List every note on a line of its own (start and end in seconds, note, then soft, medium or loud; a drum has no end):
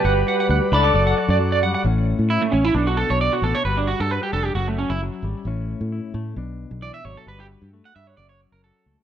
0.00 0.68 G4 medium
0.00 0.73 B4 loud
0.00 0.92 B5 medium
0.04 0.22 G1 medium
0.04 0.94 G3 medium
0.04 0.25 F#4 medium
0.04 0.94 D5 medium
0.04 0.12 F#5 medium
0.04 1.83 F#5 medium
0.27 0.72 F#4 medium
0.27 0.35 F#5 medium
0.40 0.46 F#5 medium
0.49 0.59 D2 medium
0.49 0.58 F#5 medium
0.72 0.90 C#2 medium
0.72 0.92 D4 medium
0.72 0.84 E4 medium
0.72 1.59 A4 medium
0.72 1.59 D5 medium
0.72 0.80 B5 medium
0.84 0.94 F#4 soft
0.84 0.91 D6 medium
0.94 1.12 F#1 medium
0.94 1.38 F#3 medium
0.94 2.77 A4 medium
0.94 1.84 D5 medium
0.94 1.03 D5 medium
0.94 1.84 C#6 medium
1.07 1.14 F#5 medium
1.17 1.82 F#4 medium
1.17 muted clean electric guitar stroke medium
1.28 1.74 F#2 medium
1.28 1.37 D5 medium
1.40 1.62 F#3 medium
1.52 1.59 D5 medium
1.63 1.85 G3 medium
1.63 1.70 F#5 medium
1.74 1.81 F#5 medium
1.84 2.13 A1 medium
1.84 2.52 A2 medium
1.84 2.73 C#4 medium
2.19 2.37 A2 medium
2.30 2.42 E4 medium
2.42 2.52 A3 medium
2.52 2.71 A1 medium
2.52 2.65 C#4 medium
2.65 2.74 E4 medium
2.74 3.03 B1 medium
2.74 3.63 B2 medium
2.74 3.43 B3 medium
2.74 2.86 D4 medium
2.74 3.64 D4 medium
2.74 3.20 F#4 medium
2.74 3.67 A4 medium
2.87 2.97 F#4 medium
2.97 3.09 A4 medium
3.10 3.28 B1 medium
3.10 3.20 C#5 medium
3.21 3.63 F#4 medium
3.21 3.32 D5 medium
3.33 3.43 F#4 medium
3.42 3.52 A1 medium
3.42 3.63 B3 medium
3.42 3.55 A4 medium
3.55 3.65 C#5 medium
3.65 3.93 G1 medium
3.65 4.56 G3 medium
3.65 4.11 F#4 medium
3.65 3.77 B4 medium
3.77 3.88 D4 medium
3.87 4.00 F#4 medium
4.00 4.18 G2 medium
4.00 4.11 A4 medium
4.11 4.54 F#4 medium
4.11 4.22 B4 medium
4.23 4.33 G4 medium
4.33 4.51 F1 medium
4.33 4.53 D4 medium
4.33 4.45 A4 medium
4.45 4.55 G4 medium
4.55 4.83 F#1 medium
4.55 5.01 F#3 medium
4.55 5.44 C#4 medium
4.55 4.67 F#4 medium
4.68 4.78 A3 soft
4.78 4.90 C#4 medium
4.90 5.08 F#1 medium
4.90 5.00 E4 medium
5.02 5.24 F#3 medium
5.23 5.33 G#1 medium
5.23 5.46 G3 medium
5.45 5.74 A1 medium
5.45 6.37 A2 medium
5.45 6.35 C#4 medium
5.81 5.99 A2 medium
5.92 6.37 E4 medium
6.14 6.32 A2 medium
6.14 6.34 A3 medium
6.36 6.65 B1 medium
6.36 7.25 B2 medium
6.36 8.19 D4 medium
6.71 6.90 B1 medium
6.82 7.04 E3 medium
6.82 6.94 D5 medium
6.94 7.05 E5 loud
7.05 7.14 G#1 medium
7.05 7.27 F#3 medium
7.05 7.16 C#5 medium
7.17 7.27 A4 medium
7.26 7.55 G1 medium
7.26 7.72 G3 medium
7.26 8.15 F#4 medium
7.26 7.40 B4 medium
7.40 7.46 G4 medium
7.62 7.80 G2 medium
7.73 7.96 A3 soft
7.85 7.95 F#5 medium
7.96 8.14 G2 medium
7.96 8.18 G3 medium
7.96 8.07 E5 medium
8.07 8.17 C#5 medium
8.17 8.46 F#1 medium
8.17 9.03 F#3 medium
8.17 9.03 C#4 medium
8.17 8.29 D5 medium
8.29 8.40 C#5 medium
8.52 8.71 F#1 medium
8.52 8.63 A#4 medium
8.64 9.03 F#4 medium
8.64 8.96 A4 medium
8.86 8.96 C#2 medium
8.86 9.03 A3 soft